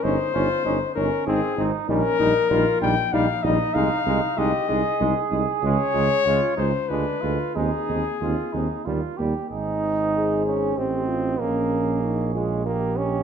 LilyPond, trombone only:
\new Staff \with { instrumentName = "Trombone" } { \clef bass \time 3/4 \key ees \dorian \tempo 4 = 96 des'8 des'8 des'8 des'8 c'8 c'8 | \key aes \major g8 g8 g8 g8 g8 g8 | aes8 aes8 aes8 aes8 aes8 aes8 | aes8 aes8 aes8 aes8 aes8 aes8 |
aes8 aes8 aes8 aes8 g8 g8 | ees'4. des'8 c'4 | bes4. aes8 bes8 des'8 | }